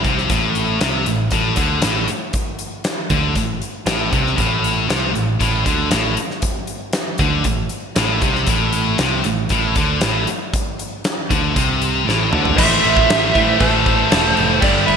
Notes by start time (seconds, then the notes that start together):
0.05 C2 C3, kick, closed hi-hat
0.18 snare
0.30 A1 A2, kick, closed hi-hat
0.55 closed hi-hat
0.81 C2 C3, snare, closed hi-hat
1.06 A1 A2, closed hi-hat
1.31 A1 A2, kick, closed hi-hat
1.56 D2 D3, kick, closed hi-hat
1.82 A1 A2, snare, closed hi-hat
2.08 closed hi-hat
2.33 kick, closed hi-hat
2.59 closed hi-hat
2.84 snare, closed hi-hat
3.10 D2 D3, kick, closed hi-hat
3.35 A1 A2, kick, closed hi-hat
3.62 closed hi-hat
3.86 A1 A2, snare, closed hi-hat
4.12 C2 C3, kick, closed hi-hat
4.27 snare
4.36 A1 A2, kick, closed hi-hat
4.64 closed hi-hat
4.89 C2 C3, snare, closed hi-hat
5.14 A1 A2, closed hi-hat
5.40 A1 A2, kick, closed hi-hat
5.66 D2 D3, kick, closed hi-hat
5.91 A1 A2, snare, closed hi-hat
6.17 closed hi-hat
6.31 snare
6.42 kick, closed hi-hat
6.67 closed hi-hat
6.93 snare, closed hi-hat
7.18 D2 D3, kick, closed hi-hat
7.44 A1 A2, kick, closed hi-hat
7.69 closed hi-hat
7.96 A1 A2, snare, closed hi-hat
8.22 C2 C3, kick, closed hi-hat
8.35 snare
8.47 A1 A2, kick, closed hi-hat
8.73 closed hi-hat
8.98 C2 C3, snare, closed hi-hat
9.24 A1 A2, closed hi-hat
9.49 A1 A2, kick, closed hi-hat
9.75 D2 D3, kick, closed hi-hat
10.01 A1 A2, snare, closed hi-hat
10.27 closed hi-hat
10.54 kick, closed hi-hat
10.79 closed hi-hat
11.04 snare, closed hi-hat
11.31 D2 D3, kick, closed hi-hat
11.55 C2 C3, kick, closed hi-hat
11.82 closed hi-hat
12.07 A1 A2, snare
12.33 D2 D3, mid tom
12.45 floor tom
12.58 A1 A2 E3 A3 C5 E5, kick, crash
12.84 A1, crash
12.97 kick
13.10 A1, snare, crash
13.34 A2 E3 A3, kick, crash
13.59 A1 A4 C5, kick, crash
13.86 kick, crash
14.11 E1 A2 E3 A3, snare, crash
14.37 F1, crash
14.61 G1 G2 D3 G3 G4 D5, kick, crash
14.86 G1 B4 E5, crash